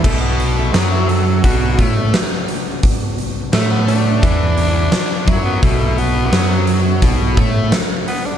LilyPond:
<<
  \new Staff \with { instrumentName = "Tonewheel organ" } { \time 4/4 \key b \minor \tempo 4 = 86 << { eis''8 r2. r8 | r1 | r1 | } \\ { <b d' fis' d''>1 | <b d' fis'>1 | <fis b d'>1 | } >> }
  \new Staff \with { instrumentName = "Tenor saxophone" } { \time 4/4 \key b \minor a16 b8 a16 b16 e'16 a'8 fis'4 r4 | r4 a16 b16 d'2 e'16 b16 | a8 b4 r2 b16 d'16 | }
  \new Staff \with { instrumentName = "Distorted electric guitar" } { \clef bass \time 4/4 \key b \minor b,4 fis4 b,8 a8 r4 | r4 a4 e4 r8 fis8 | b,4 fis4 b,8 a8 r4 | }
  \new Staff \with { instrumentName = "Distorted electric guitar" } { \clef bass \time 4/4 \key b \minor b,4 fis4 b,8 a8 r4 | r4 a4 e4 r8 fis8 | b,4 fis4 b,8 a8 r4 | }
  \new Staff \with { instrumentName = "Picked electric bass" } { \clef bass \time 4/4 \key b \minor b,,4 fis,4 b,,8 a,8 r4 | r4 a,4 e,4 r8 fis,8 | b,,4 fis,4 b,,8 a,8 r4 | }
  \new DrumStaff \with { instrumentName = "Drums" } \drummode { \time 4/4 <cymc bd>8 hho8 <hho sn>8 hho8 <hho bd>8 <hho bd>8 <hho sn>8 hho8 | <hho bd>8 hho8 <hho sn>8 hho8 <hho bd>8 hho8 <hho sn>8 <hho bd>8 | <hho bd>8 hho8 <hho sn>8 hho8 <hho bd>8 <hho bd>8 <hho sn>8 hho8 | }
>>